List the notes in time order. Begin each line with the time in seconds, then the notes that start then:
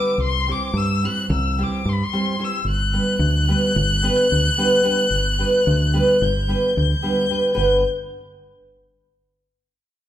Already playing: G3 B3 D4 G4 B4 D6
0.18 C2
0.22 C6
0.47 G3 C4 E4 G4 C5
0.51 D6
0.73 G2 E6
1.03 G3 C4 E4 G4 C5 F#6
1.30 C2 E6
1.58 G3 C4 E4 G4 C5
1.63 D6
1.85 G2 C6
1.93 B5
2.03 C6
2.13 G3 C4 E4 G4 C5
2.39 G3 C4 E4 G4 C5
2.44 E6
2.65 G1
2.69 F#6
2.93 G3 B3 D4 G4 B4
3.19 D2
3.48 G3 B3 D4 G4 B4
3.76 G1
4.02 G3 B3 D4 G4 B4
4.32 D2
4.58 G3 B3 D4 G4 B4
4.83 G3 B3 D4 G4 B4
5.10 G1
5.38 G3 B3 D4 G4 B4
5.67 D2
5.93 G3 B3 D4 G4 B4
6.22 G1 G6
6.48 G3 B3 D4 G4 B4
6.77 D2 G6
7.02 G3 B3 D4 G4 B4
7.29 G3 B3 D4 G4 B4
7.54 G1 B3 D4 G4 B4 G6